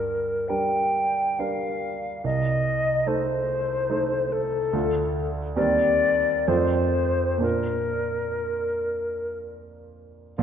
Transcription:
Already playing: grand piano G2, flute A#4
0.48 grand piano G3 D4 A#4, flute G5
1.39 grand piano G3 D4 A#4, flute F5
2.24 grand piano C2, flute D#5
3.06 grand piano A3 D#4 A4, flute C5
3.90 grand piano A3 D#4 A4
4.32 flute A4
4.73 grand piano D2 A3 D4 F4
5.56 grand piano D#2 G3 C4 A#4, flute D5
6.47 grand piano F2 A3 C4 F4, flute C5
7.38 grand piano A#2 A#3 D4 F4, flute A#4
10.38 grand piano A#1 A#2, flute F5

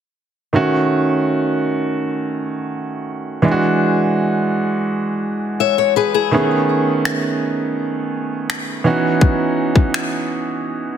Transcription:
0.53 grand piano D#3 A3 C#4 F#4
3.42 grand piano E3 G#3 D4 E4
3.51 grand piano F#4
5.60 steel-string acoustic guitar C#5 E5
5.78 steel-string acoustic guitar C#5
5.96 steel-string acoustic guitar G#4 B4
6.14 steel-string acoustic guitar E4 G#4
6.31 grand piano D#3 A3 B3 C#4 G#4
7.05 finger snap
8.50 finger snap
8.84 grand piano E3 B3 C#4 D#4 F#4
9.21 kick
9.76 kick
9.94 finger snap

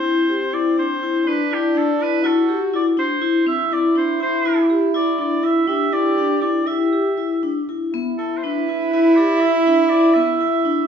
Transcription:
Already playing: french horn C4, oboe C5
0.03 vibraphone E4
0.29 vibraphone G4
0.53 vibraphone E4, oboe D5
0.78 vibraphone D4, oboe C5
1.03 vibraphone E4
1.26 french horn D4, vibraphone D4, oboe B4
1.51 vibraphone E4, oboe G4
1.75 vibraphone D4, oboe A4
1.99 vibraphone E4, oboe B4
2.23 vibraphone E4, french horn F#4, oboe A4
2.49 vibraphone G4
2.73 vibraphone E4, oboe D5
2.97 vibraphone D4, oboe C5
3.22 vibraphone E4
3.46 vibraphone C4, french horn E4, oboe E5
3.72 vibraphone E4, oboe D5
3.96 vibraphone D4, oboe C5
4.20 vibraphone E4, oboe C5
4.45 vibraphone E4
4.70 vibraphone G4
4.94 vibraphone E4, oboe D5
5.18 vibraphone D4, oboe D5
5.43 vibraphone E4, oboe E5
5.67 vibraphone D4, french horn G4, oboe E5
5.93 vibraphone E4, oboe D5
6.18 vibraphone D4
6.42 vibraphone E4, oboe D5
6.66 vibraphone E4, french horn G4, oboe E5
6.93 vibraphone G4
7.18 vibraphone E4
7.43 vibraphone D4
7.69 vibraphone E4
7.93 vibraphone B3, french horn E4
8.18 vibraphone E4, oboe A4
8.37 oboe C5
8.43 vibraphone D4, oboe B4
8.69 vibraphone E4
8.92 vibraphone E4, oboe B4
9.16 vibraphone G4, oboe D5
9.40 vibraphone E4, oboe E5
9.67 vibraphone D4
9.90 vibraphone E4, oboe D5
10.14 vibraphone B3, oboe E5
10.41 vibraphone E4
10.65 vibraphone D4

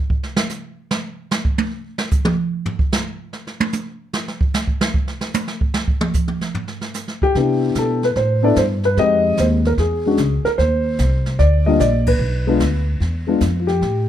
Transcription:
0.10 kick
0.23 snare
0.36 snare
0.49 snare, hi-hat pedal
0.91 snare
1.31 snare, hi-hat pedal
1.45 kick
1.58 high tom
1.98 snare
2.11 kick, hi-hat pedal
2.25 mid tom
2.66 floor tom
2.79 kick
2.92 snare, hi-hat pedal
3.33 snare
3.47 snare
3.60 high tom
3.73 hi-hat pedal, high tom
4.13 snare
4.28 snare
4.41 kick
4.54 snare, hi-hat pedal
4.67 kick
4.81 snare
4.94 kick
5.08 snare
5.21 snare
5.34 hi-hat pedal, high tom
5.48 snare
5.61 kick
5.74 snare
5.88 kick
6.01 mid tom
6.14 kick, hi-hat pedal
6.28 mid tom
6.41 snare
6.54 floor tom
6.68 snare
6.81 snare
6.94 snare, hi-hat pedal
7.08 snare
7.22 grand piano G4, kick
7.35 upright bass C3, grand piano B3 D4 E4, brush sweep, kick, snare
7.75 upright bass B2, grand piano A4, kick, snare, hi-hat pedal
8.03 grand piano B4, snare
8.16 upright bass A2, grand piano C5, brush sweep, kick, snare
8.42 grand piano B3 D4 E4 A4 D5
8.56 upright bass G2, grand piano C5, kick, snare, hi-hat pedal
8.83 grand piano B4, snare
8.97 upright bass F2, grand piano G#3 C4 D#4 G4 D#5, brush sweep, kick, snare
9.37 upright bass D#2, grand piano C5, kick, snare, hi-hat pedal
9.65 grand piano A#4, snare
9.78 upright bass E2, grand piano G#4, brush sweep, kick, snare
10.06 grand piano G#3 C#4 D4 F#4
10.17 upright bass C#2, kick, snare, hi-hat pedal
10.44 grand piano A#4, muted upright bass stroke, snare
10.58 upright bass D#2, grand piano C5, brush sweep, kick, snare
10.99 upright bass C2, kick, snare, hi-hat pedal
11.26 snare
11.39 upright bass D2, grand piano D5, brush sweep, snare
11.66 grand piano G3 A#3 D4 F4 D#5
11.80 upright bass A#1, grand piano D5, kick, snare, hi-hat pedal
12.07 grand piano B4, kick, ride
12.19 upright bass B1, brush sweep
12.47 grand piano G#3 B3 D4 F4
12.60 upright bass D2, kick, snare, hi-hat pedal
13.00 upright bass E2, brush sweep, kick, snare
13.27 grand piano G#3 B3 D4 F4
13.40 upright bass F2, kick, snare, hi-hat pedal
13.60 grand piano F4
13.67 grand piano G4, snare
13.81 upright bass A2, brush sweep, kick, snare

